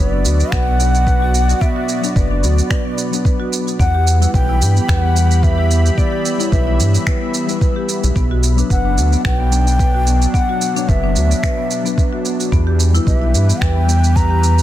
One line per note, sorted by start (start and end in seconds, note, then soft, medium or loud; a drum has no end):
0.00 0.27 F#1 medium
0.00 3.80 B2 medium
0.00 0.76 F#3 medium
0.00 0.76 B3 medium
0.00 14.62 B3 medium
0.00 0.77 D4 medium
0.00 3.80 F#4 medium
0.00 0.11 B4 loud
0.00 0.78 B4 medium
0.00 0.54 D5 loud
0.00 1.11 E5 medium
0.00 1.19 B5 medium
0.13 0.24 D4 medium
0.21 4.50 D5 medium
0.25 0.43 D2 loud
0.25 0.39 F#4 medium
0.25 shaker medium
0.40 0.47 B3 medium
0.40 shaker soft
0.52 1.54 B1 medium
0.52 0.66 B4 loud
0.52 1.63 F#5 loud
0.52 finger snap medium
0.52 kick loud
0.52 shaker soft
0.68 0.79 B3 medium
0.77 1.99 F#3 medium
0.77 2.00 B3 medium
0.77 0.93 B3 medium
0.77 2.00 D4 medium
0.77 shaker medium
0.82 2.01 F#4 medium
0.95 1.06 B3 medium
0.95 shaker soft
1.07 1.20 B4 loud
1.07 kick loud
1.07 shaker soft
1.22 1.33 F#4 loud
1.34 1.43 B3 medium
1.34 shaker medium
1.49 1.61 F#4 medium
1.49 shaker soft
1.61 1.75 B3 loud
1.61 2.18 E5 loud
1.61 kick loud
1.61 shaker soft
1.76 1.87 F#4 medium
1.89 2.02 B3 medium
1.89 shaker medium
2.01 3.08 F#3 medium
2.01 3.09 B3 medium
2.01 2.15 D4 loud
2.01 3.09 D4 medium
2.01 shaker soft
2.06 3.10 D5 loud
2.16 2.45 F#1 medium
2.16 2.29 B4 loud
2.16 3.52 D5 medium
2.16 kick loud
2.16 shaker soft
2.31 2.42 D4 medium
2.43 2.61 D2 loud
2.43 2.57 F#4 medium
2.43 shaker medium
2.58 2.65 B3 medium
2.58 shaker soft
2.70 2.84 B4 medium
2.70 finger snap medium
2.70 kick loud
2.70 shaker soft
2.85 2.97 B3 medium
2.98 3.11 B3 medium
2.98 shaker medium
3.11 3.77 F#3 medium
3.11 3.78 B3 medium
3.11 3.24 B3 medium
3.11 3.79 D4 medium
3.11 3.79 B4 medium
3.11 shaker soft
3.25 3.38 B4 loud
3.25 kick loud
3.25 shaker soft
3.40 3.51 F#4 loud
3.52 3.61 B3 medium
3.52 shaker medium
3.67 3.79 F#4 medium
3.67 shaker soft
3.79 4.27 E2 loud
3.79 8.16 E3 medium
3.79 3.93 B3 loud
3.79 4.30 F#5 loud
3.79 kick loud
3.79 shaker soft
3.95 4.06 G4 loud
4.07 4.20 B3 medium
4.07 shaker medium
4.20 5.12 G3 medium
4.20 5.13 B3 medium
4.20 4.33 E4 loud
4.20 5.13 E4 medium
4.20 shaker soft
4.24 5.14 B4 medium
4.30 4.63 B1 medium
4.30 4.47 B4 loud
4.30 4.90 G5 loud
4.30 9.07 B5 medium
4.30 kick loud
4.35 shaker soft
4.43 8.16 G4 medium
4.49 4.60 E4 medium
4.62 4.80 G2 loud
4.62 4.75 G4 medium
4.62 shaker medium
4.76 4.83 B3 medium
4.76 shaker soft
4.89 5.90 E2 medium
4.89 5.02 B4 loud
4.89 5.45 F#5 loud
4.89 finger snap medium
4.89 kick loud
4.89 shaker soft
5.03 5.14 B3 medium
5.14 6.35 G3 medium
5.14 5.29 B3 medium
5.14 6.36 B3 medium
5.14 6.37 E4 medium
5.14 shaker medium
5.18 6.37 G4 medium
5.30 5.42 B3 medium
5.30 shaker soft
5.38 9.62 E5 medium
5.43 5.56 B4 medium
5.43 5.99 E5 loud
5.43 kick loud
5.43 shaker soft
5.58 5.69 G4 loud
5.70 5.79 B3 medium
5.70 shaker medium
5.85 5.97 G4 medium
5.85 shaker soft
5.98 6.11 B3 loud
5.98 6.52 D5 loud
5.98 kick loud
5.98 shaker soft
6.12 6.24 G4 medium
6.25 6.39 B3 medium
6.25 shaker medium
6.38 7.44 G3 loud
6.38 7.45 B3 medium
6.38 6.51 E4 loud
6.38 7.46 E4 medium
6.38 7.46 C#5 loud
6.38 shaker soft
6.52 6.81 B1 medium
6.52 6.66 B4 loud
6.52 7.03 E5 medium
6.52 kick loud
6.52 shaker soft
6.67 6.78 E4 medium
6.79 6.98 G2 loud
6.79 6.93 G4 medium
6.79 shaker medium
6.94 7.01 B3 medium
6.94 shaker soft
7.07 7.20 B4 loud
7.07 finger snap medium
7.07 kick loud
7.07 shaker soft
7.22 7.33 B3 medium
7.34 7.48 B3 medium
7.34 shaker medium
7.47 8.13 G3 medium
7.47 8.14 B3 medium
7.47 7.61 B3 medium
7.47 8.15 E4 medium
7.47 8.15 B4 medium
7.47 shaker soft
7.61 7.75 B4 medium
7.61 kick loud
7.61 shaker soft
7.76 7.87 G4 loud
7.89 7.97 B3 medium
7.89 shaker medium
8.04 8.11 B1 medium
8.04 8.15 G4 medium
8.04 shaker soft
8.16 8.63 B1 loud
8.16 12.53 B2 medium
8.16 8.29 B3 loud
8.16 kick loud
8.16 shaker soft
8.31 8.42 F#4 loud
8.43 8.57 B3 medium
8.43 shaker medium
8.49 12.52 F#3 medium
8.56 9.48 F#3 medium
8.56 9.49 B3 medium
8.56 8.69 D4 loud
8.56 9.50 D4 medium
8.56 9.50 B4 loud
8.56 shaker soft
8.68 8.99 F#1 loud
8.68 14.28 D4 medium
8.68 8.84 B4 loud
8.68 9.22 F#5 loud
8.68 kick loud
8.68 shaker soft
8.85 8.97 D4 medium
8.98 9.16 D2 loud
8.98 9.11 F#4 medium
8.98 shaker medium
9.13 9.20 B3 medium
9.13 shaker soft
9.25 10.27 B1 medium
9.25 9.38 B4 medium
9.25 10.36 G5 loud
9.25 finger snap medium
9.25 kick loud
9.25 shaker soft
9.40 9.51 B3 medium
9.50 10.72 F#3 medium
9.50 10.72 B3 medium
9.50 9.66 B3 medium
9.50 10.73 D4 medium
9.50 shaker medium
9.67 9.79 B3 medium
9.67 shaker soft
9.79 9.93 B4 medium
9.79 kick loud
9.79 shaker soft
9.94 10.06 F#4 medium
10.07 10.15 B3 medium
10.07 shaker medium
10.22 10.34 F#4 medium
10.22 shaker soft
10.34 10.48 B3 loud
10.34 10.90 F#5 loud
10.34 kick loud
10.34 shaker soft
10.49 10.60 F#4 loud
10.62 10.75 B3 medium
10.62 shaker medium
10.74 11.81 F#3 medium
10.74 11.81 B3 medium
10.74 10.88 D4 loud
10.74 11.82 D4 medium
10.74 11.83 C#5 medium
10.74 shaker soft
10.88 11.17 F#1 loud
10.88 11.02 B4 loud
10.88 12.25 E5 loud
10.88 kick loud
10.88 shaker soft
11.04 11.15 D4 loud
11.16 11.34 D2 loud
11.16 11.29 F#4 medium
11.16 shaker medium
11.31 11.38 B3 medium
11.31 shaker soft
11.43 11.57 B4 loud
11.43 finger snap medium
11.43 kick loud
11.43 shaker soft
11.58 11.69 B3 medium
11.71 11.84 B3 medium
11.71 shaker medium
11.83 12.50 F#3 medium
11.83 12.51 B3 medium
11.83 11.97 B3 medium
11.83 12.51 D4 medium
11.83 shaker soft
11.87 12.52 B4 medium
11.98 12.11 B4 medium
11.98 kick loud
11.98 shaker soft
12.13 12.24 F#4 medium
12.25 12.34 B3 medium
12.25 shaker medium
12.40 12.52 F#4 medium
12.40 shaker soft
12.52 13.00 E2 loud
12.52 14.62 E3 medium
12.52 12.66 B3 loud
12.52 kick medium
12.52 shaker soft
12.64 14.62 G4 medium
12.64 12.78 G4 loud
12.79 12.93 B3 medium
12.79 shaker medium
12.85 14.62 B4 medium
12.93 13.85 G3 medium
12.93 13.86 B3 medium
12.93 13.06 E4 loud
12.93 13.86 E4 medium
12.93 shaker soft
12.97 13.87 B4 medium
13.07 13.36 B1 medium
13.07 13.20 B4 loud
13.07 13.64 E5 medium
13.07 kick loud
13.07 shaker soft
13.22 13.33 E4 medium
13.34 13.52 G2 loud
13.34 13.47 G4 medium
13.34 shaker medium
13.49 13.56 B3 medium
13.49 shaker soft
13.61 14.62 E2 medium
13.61 13.75 B4 loud
13.61 14.62 E5 medium
13.61 14.18 G5 loud
13.61 finger snap medium
13.61 kick loud
13.61 shaker soft
13.76 13.87 B3 medium
13.87 14.62 G3 medium
13.87 14.62 B3 medium
13.87 14.02 B3 medium
13.87 14.62 E4 medium
13.87 14.62 G4 medium
13.87 shaker medium
14.03 14.15 B3 medium
14.03 shaker soft
14.16 14.29 B4 loud
14.16 14.62 A#5 loud
14.16 kick medium
14.16 shaker soft
14.30 14.42 G4 loud
14.43 14.52 B3 medium
14.43 shaker medium
14.58 14.62 G4 medium
14.58 shaker soft